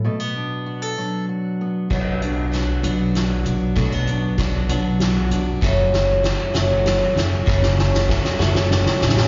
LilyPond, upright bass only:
\new Staff \with { instrumentName = "Upright bass" } { \clef bass \time 6/8 \key b \minor \tempo 4. = 65 r2. | b,,4. b,,4 b,,8 | b,,4. b,,4 b,,8 | fis,,4. fis,,4 fis,,8 |
fis,,4. fis,,4 a,,8 | }